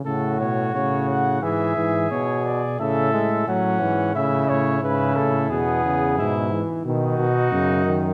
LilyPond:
<<
  \new Staff \with { instrumentName = "Cornet" } { \time 4/4 \key a \major \tempo 4 = 89 a'8 cis''8 cis''8 fis''8 e''4 cis''8 d''8 | e''4 fis''4 e''8 cis''8 b'8 a'8 | gis'4. r8 fis'2 | }
  \new Staff \with { instrumentName = "Trumpet" } { \time 4/4 \key a \major fis'2 gis'2 | a'4 cis'4 e'4 e'4 | b4 e'8 r8 dis'2 | }
  \new Staff \with { instrumentName = "Trombone" } { \clef bass \time 4/4 \key a \major a,4 cis4 e8 e8 b,4 | cis8 gis8 fis8 e8 cis4 cis4 | b,8 cis8 b,8 e8 dis8 r8 cis8 dis8 | }
  \new Staff \with { instrumentName = "Bass trombone" } { \clef bass \time 4/4 \key a \major cis8 b,8 a,4 gis,8 gis,8 b,4 | a,4 a,8 gis,8 a,8 a,8 gis,8 a,8 | e,4 gis,8 r8 b,8 b,8 fis,4 | }
>>